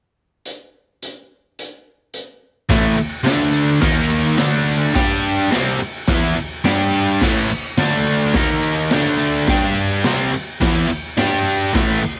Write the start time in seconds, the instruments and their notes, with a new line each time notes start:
0.45 closed hi-hat
1.03 closed hi-hat
1.59 closed hi-hat
2.14 closed hi-hat
2.69 overdriven electric guitar A2 E3 A3, kick, snare, ride
2.98 muted overdriven electric guitar stroke, ride
3.24 overdriven electric guitar D3 A3 D4, snare, ride
3.54 ride
3.81 overdriven electric guitar D#3 A#3 D#4, kick, snare, ride
4.10 ride
4.38 overdriven electric guitar D3 A3 D4, snare, ride
4.67 ride
4.94 overdriven electric guitar G3 D4 G4, kick, snare, ride
5.24 ride
5.51 overdriven electric guitar C3 G3 C4, snare, ride
5.80 muted overdriven electric guitar stroke, ride
6.07 overdriven electric guitar E3 B3 E4, kick, snare, ride
6.36 muted overdriven electric guitar stroke, ride
6.64 overdriven electric guitar G3 D4 G4, snare, ride
6.93 ride
7.21 overdriven electric guitar A2 E3 A3, kick, snare, crash
7.50 muted overdriven electric guitar stroke, ride
7.77 overdriven electric guitar D3 A3 D4, snare, ride
8.07 ride
8.34 overdriven electric guitar D#3 A#3 D#4, kick, snare, ride
8.63 ride
8.91 overdriven electric guitar D3 A3 D4, snare, ride
9.19 ride
9.47 overdriven electric guitar G3 D4 G4, kick, snare, ride
9.76 ride
10.04 overdriven electric guitar C3 G3 C4, snare, ride
10.33 muted overdriven electric guitar stroke, ride
10.61 overdriven electric guitar E3 B3 E4, kick, snare, ride
10.89 muted overdriven electric guitar stroke, ride
11.17 overdriven electric guitar G3 D4 G4, snare, ride
11.46 ride
11.73 overdriven electric guitar A2 E3 A3, kick, snare, crash
12.01 muted overdriven electric guitar stroke, ride